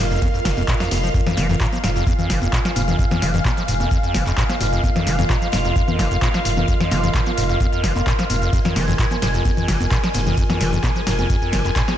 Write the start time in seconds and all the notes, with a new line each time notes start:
Already playing: F4 A#4 D#5 F5 G5
0.00 F1
0.11 F2, snare, shaker
0.22 F2, kick, closed hi-hat, ride, high conga, shaker
0.34 F2, shaker
0.45 F1 D#3, kick, snare, closed hi-hat, open hi-hat, ride, shaker
0.57 F2, high conga, shaker
0.68 A#2, kick, clap, closed hi-hat, ride, shaker
0.80 F2, snare, closed hi-hat, shaker
0.91 F1 F2, snare, closed hi-hat, open hi-hat, ride, high conga, shaker
1.04 F3, shaker
1.14 F2 F4 F5, kick, closed hi-hat, shaker
1.26 F2, snare, closed hi-hat, low conga, shaker
1.31 G#5
1.37 F1 F3, snare, closed hi-hat, open hi-hat, high conga, shaker
1.49 F2 D#5, snare, low conga, shaker
1.57 A#4, kick, snare, clap
1.61 A#2, closed hi-hat, shaker
1.73 F3, high conga, shaker
1.83 F1 G#2, snare, closed hi-hat, open hi-hat, shaker
1.96 F2, snare, shaker
2.07 F2, kick, closed hi-hat, high conga, shaker
2.19 F2, low conga, shaker
2.30 F1 F3, kick, snare, closed hi-hat, open hi-hat, shaker
2.42 F2, high conga, shaker
2.52 A#2, kick, snare, clap, closed hi-hat, shaker
2.65 F3, snare, shaker
2.76 F1 G#2, closed hi-hat, open hi-hat, high conga, shaker
2.88 F2, snare, low conga, shaker
2.99 F2, kick, closed hi-hat, shaker
3.10 F2, snare, high conga, low conga, shaker
3.22 F1 F3, snare, closed hi-hat, open hi-hat, shaker
3.34 F2, snare, low conga, shaker
3.45 A#2, kick, snare, clap, closed hi-hat, high conga, shaker
3.57 F3, snare, shaker
3.68 F1 G#2, closed hi-hat, open hi-hat, shaker
3.80 F2, snare, high conga, shaker
3.91 F2, kick, closed hi-hat, shaker
4.03 F2, shaker
4.14 F1 F3, kick, snare, closed hi-hat, open hi-hat, high conga, shaker
4.26 F2, clap, shaker
4.37 A#2, kick, snare, clap, closed hi-hat, shaker
4.49 F3, snare, closed hi-hat, high conga, shaker
4.61 F1 G#2, snare, closed hi-hat, open hi-hat, shaker
4.73 F2, shaker
4.84 F2, kick, closed hi-hat, high conga, shaker
4.96 F2, snare, closed hi-hat, low conga, shaker
5.00 C6
5.07 F1 F3, snare, closed hi-hat, open hi-hat, shaker
5.19 F2, snare, high conga, low conga, shaker
5.30 A#2, kick, snare, clap, closed hi-hat, shaker
5.42 F3, shaker
5.52 F1 G#2, snare, closed hi-hat, open hi-hat, high conga, shaker
5.65 F2, snare, shaker
5.76 F2, kick, closed hi-hat, shaker
5.88 F2, high conga, low conga, shaker
5.99 F1 F3, kick, snare, closed hi-hat, open hi-hat, shaker
6.11 F2, shaker
6.22 A#2, kick, snare, clap, closed hi-hat, high conga, shaker
6.34 F3, snare, shaker
6.45 F1 G#2, closed hi-hat, open hi-hat, shaker
6.57 F2, snare, high conga, low conga, shaker
6.68 F2, kick, closed hi-hat, shaker
6.80 F2, snare, low conga, shaker
6.91 F1 F3, snare, closed hi-hat, open hi-hat, high conga, shaker
7.03 F2, snare, low conga, shaker
7.14 A#2, kick, snare, clap, closed hi-hat, shaker
7.26 F3, snare, high conga, shaker
7.37 F1 G#2, closed hi-hat, open hi-hat, shaker
7.49 F2, snare, shaker
7.60 F2, kick, closed hi-hat, high conga, shaker
7.73 F2, shaker
7.84 F1 F3, kick, snare, closed hi-hat, open hi-hat, shaker
7.96 F2, clap, high conga, shaker
8.07 A#2, kick, snare, clap, closed hi-hat, shaker
8.19 F3, snare, closed hi-hat, shaker
8.30 F1 G#2, closed hi-hat, open hi-hat, high conga, shaker
8.42 F2, shaker
8.53 F2 G#5, kick, closed hi-hat, ride, shaker
8.65 F2, snare, closed hi-hat, low conga, shaker
8.69 G#5
8.76 F1 F3, snare, closed hi-hat, open hi-hat, ride, high conga, shaker
8.88 F2, snare, low conga, shaker
8.99 A#2, kick, snare, clap, closed hi-hat, ride, shaker
9.11 F3, high conga, shaker
9.22 F1 G#2, snare, closed hi-hat, open hi-hat, ride, shaker
9.34 F2, snare, shaker
9.45 F2, kick, closed hi-hat, ride, high conga, shaker
9.57 F2, low conga, shaker
9.68 F1 F3, kick, snare, closed hi-hat, open hi-hat, ride, shaker
9.80 F2, high conga, shaker
9.91 A#2, kick, snare, clap, closed hi-hat, ride, shaker
10.03 F3, snare, shaker
10.14 F1 G#2, closed hi-hat, open hi-hat, ride, high conga, shaker
10.26 F2, snare, low conga, shaker
10.37 F2, kick, closed hi-hat, ride, shaker
10.50 F2, snare, high conga, low conga, shaker
10.60 F1 F3, snare, closed hi-hat, open hi-hat, ride, shaker
10.73 F2, snare, low conga, shaker
10.83 A#2, kick, snare, clap, closed hi-hat, ride, high conga, shaker
10.96 F3, snare, shaker
11.07 F1 G#2, snare, closed hi-hat, open hi-hat, ride, shaker
11.19 F2, snare, high conga, shaker
11.30 F2, kick, closed hi-hat, ride, shaker
11.42 F2, shaker
11.52 F1 F3, kick, snare, closed hi-hat, open hi-hat, ride, high conga, shaker
11.65 F2, clap, shaker
11.76 A#2, kick, snare, clap, closed hi-hat, ride, shaker
11.88 F3, snare, closed hi-hat, high conga, shaker